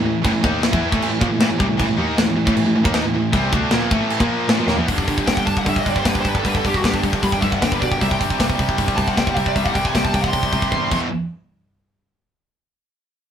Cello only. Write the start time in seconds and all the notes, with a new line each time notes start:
0.05 A2
0.25 A2
0.33 A2
0.44 D#2
0.61 A2
0.73 E2
0.92 A2
1.09 A2
1.21 A#2
1.29 A2
1.38 A2
1.50 A2
1.60 C2
1.69 A2
1.80 A2
1.89 A2
1.98 D#2
2.18 A2
2.26 A2
2.36 A2
2.47 A2
2.57 A2
2.67 A2
2.77 A2
2.85 D#2
3.05 A2
3.16 A2
3.33 C2
3.53 D2
3.73 A#2
3.91 A2
4.20 A#2
4.49 A2
4.59 A#2
4.67 D#2
4.77 E2
4.88 G2
5.08 D3
5.27 G2
5.47 G2
5.66 D3
5.86 G2
6.05 G2
6.25 G2
6.44 G2
6.65 G2
6.85 G2
7.04 G2
7.23 G3
7.42 G2
7.62 D3
7.82 B2
8.02 C2
8.21 G2
8.40 C2
8.59 C2
8.78 G2
8.97 C2
9.18 C2
9.37 C2
9.55 C2
9.75 C2
9.95 C2
10.14 C2
10.33 C3
10.53 C2
10.72 G2
10.91 E2